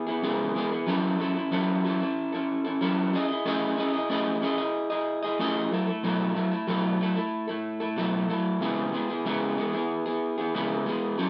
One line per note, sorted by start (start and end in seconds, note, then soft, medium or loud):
0.07 0.22 B3 soft
0.07 0.22 E4 medium
0.07 0.23 G#4 medium
0.22 0.55 C#3 medium
0.22 0.54 G#3 medium
0.22 0.55 B3 medium
0.22 0.56 E4 medium
0.22 0.56 G#4 medium
0.55 0.71 G#3 medium
0.55 0.72 B3 medium
0.55 0.71 E4 medium
0.55 0.70 G#4 medium
0.71 0.88 B3 soft
0.71 0.87 E4 soft
0.71 0.87 G#4 soft
0.87 1.18 F#3 medium
0.87 1.19 C#4 medium
0.87 1.19 E4 medium
0.87 1.20 A4 medium
1.19 1.35 F#3 medium
1.19 1.36 C#4 medium
1.19 1.35 E4 medium
1.19 1.34 A4 medium
1.35 1.51 C#4 soft
1.35 1.52 E4 soft
1.35 1.52 A4 soft
1.51 1.83 F#3 medium
1.51 1.84 C#4 medium
1.51 1.85 E4 medium
1.51 1.85 A4 medium
1.84 2.01 F#3 medium
1.84 2.01 C#4 medium
1.84 2.01 E4 medium
1.84 1.99 A4 medium
2.00 2.34 C#4 soft
2.00 2.33 E4 medium
2.00 2.31 A4 medium
2.33 2.66 C#4 soft
2.33 2.65 E4 medium
2.33 2.63 A4 medium
2.64 2.80 C#4 soft
2.64 2.81 E4 soft
2.64 2.81 A4 medium
2.81 3.13 F#3 medium
2.81 3.12 C#4 medium
2.81 3.13 E4 medium
2.81 3.14 A4 medium
3.13 3.29 C#4 medium
3.13 3.30 E4 medium
3.13 3.29 G#4 medium
3.13 3.27 D#5 medium
3.28 3.46 E4 soft
3.28 3.46 G#4 soft
3.28 3.45 D#5 soft
3.45 3.78 A3 medium
3.45 3.76 C#4 medium
3.45 3.77 E4 medium
3.45 3.78 G#4 medium
3.45 3.79 D#5 medium
3.77 3.94 C#4 medium
3.77 3.94 E4 medium
3.77 3.94 G#4 medium
3.77 3.92 D#5 medium
3.94 4.10 E4 soft
3.94 4.10 G#4 soft
3.94 4.10 D#5 medium
4.10 4.42 A3 medium
4.10 4.40 C#4 medium
4.10 4.42 E4 medium
4.10 4.43 G#4 medium
4.10 4.43 D#5 medium
4.42 4.58 C#4 medium
4.42 4.59 E4 medium
4.42 4.58 G#4 medium
4.42 4.57 D#5 medium
4.58 4.91 E4 soft
4.58 4.90 G#4 medium
4.58 4.89 D#5 medium
4.90 5.24 E4 soft
4.90 5.23 G#4 soft
4.90 5.21 D#5 medium
5.23 5.39 E4 soft
5.23 5.39 G#4 medium
5.23 5.39 D#5 medium
5.39 5.70 A3 medium
5.39 5.71 C#4 medium
5.39 5.72 E4 medium
5.39 5.72 G#4 medium
5.39 5.72 D#5 medium
5.71 5.87 F#3 medium
5.71 5.88 A3 medium
5.71 5.87 E4 medium
5.71 5.86 A4 medium
5.87 6.03 A3 soft
5.87 6.03 E4 soft
5.87 6.03 A4 soft
6.03 6.36 B2 medium
6.03 6.33 F#3 medium
6.03 6.34 A3 medium
6.03 6.35 E4 medium
6.03 6.36 A4 medium
6.35 6.51 F#3 medium
6.35 6.52 A3 medium
6.35 6.52 E4 medium
6.35 6.50 A4 medium
6.51 6.67 A3 soft
6.51 6.67 E4 soft
6.51 6.68 A4 soft
6.67 7.00 B2 medium
6.67 6.99 F#3 medium
6.67 7.00 A3 medium
6.67 7.01 E4 medium
6.67 7.01 A4 medium
7.00 7.16 F#3 medium
7.00 7.17 A3 medium
7.00 7.16 E4 medium
7.00 7.14 A4 medium
7.15 7.49 A3 soft
7.15 7.48 E4 medium
7.15 7.46 A4 medium
7.48 7.81 A3 soft
7.48 7.80 E4 medium
7.48 7.79 A4 medium
7.80 7.96 A3 soft
7.80 7.97 E4 medium
7.80 7.97 A4 medium
7.96 8.29 B2 medium
7.96 8.27 F#3 medium
7.96 8.28 A3 medium
7.96 8.29 E4 medium
7.96 8.30 A4 medium
8.28 8.61 F#3 medium
8.28 8.61 A3 medium
8.28 8.61 E4 medium
8.28 8.62 A4 medium
8.60 8.93 C#3 medium
8.60 8.91 G#3 medium
8.60 8.92 B3 medium
8.60 8.93 E4 medium
8.60 8.94 G#4 medium
8.92 9.09 G#3 medium
8.92 9.10 B3 medium
8.92 9.09 E4 medium
8.92 9.08 G#4 medium
9.09 9.25 B3 soft
9.09 9.25 E4 soft
9.09 9.25 G#4 medium
9.25 9.57 C#3 medium
9.25 9.55 G#3 medium
9.25 9.57 B3 medium
9.25 9.57 E4 medium
9.25 9.58 G#4 medium
9.57 9.73 G#3 medium
9.57 9.74 B3 medium
9.57 9.73 E4 medium
9.57 9.72 G#4 medium
9.73 10.07 B3 soft
9.73 10.06 E4 medium
9.73 10.04 G#4 medium
10.06 10.39 B3 soft
10.06 10.38 E4 soft
10.06 10.37 G#4 medium
10.38 10.54 B3 soft
10.38 10.55 E4 soft
10.38 10.54 G#4 medium
10.54 10.86 C#3 medium
10.54 10.84 G#3 medium
10.54 10.86 B3 medium
10.54 10.86 E4 medium
10.54 10.87 G#4 medium
10.85 11.17 G#3 medium
10.85 11.18 B3 medium
10.85 11.18 E4 medium
10.85 11.20 G#4 medium
11.18 11.30 F#3 medium
11.18 11.30 C#4 medium
11.18 11.30 E4 medium
11.18 11.30 A4 medium